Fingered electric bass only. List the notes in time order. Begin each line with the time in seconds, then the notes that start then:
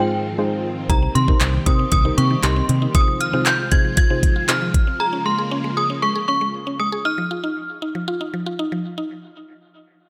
0.90 C2
1.15 C3
1.41 C2
1.67 C3
1.92 C2
2.18 C3
2.44 C2
2.69 C3